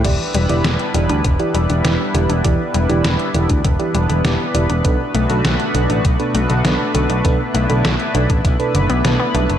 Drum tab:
CC |x---------------|----------------|----------------|----------------|
HH |x-xxxxxxxxxxx-xx|x-xxxxxxxxxxx-xx|x-xxxxxxxxxxx-xx|x-xxxxxxxxxxx-xx|
SD |----o-------o---|----o-------o---|----o-------o---|----o-------o---|
BD |o-------o-------|o------oo-------|o-------o-------|o------oo-------|